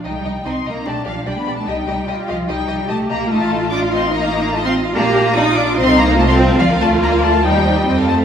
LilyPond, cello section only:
\new Staff \with { instrumentName = "Cello section" } { \time 4/4 \key c \dorian \tempo 4 = 146 \tuplet 3/2 { g16 a16 g4 } c'8 bes8 a8 f8 g16 b8 a16 | g4. f8 g4 a8 bes8 | a4 d'8 c'8 bes4 a16 c'8. | bes4 ees'8 d'8 c'8 bes8 a16 c'8. |
f8 a8 bes8 a8 g4. a8 | }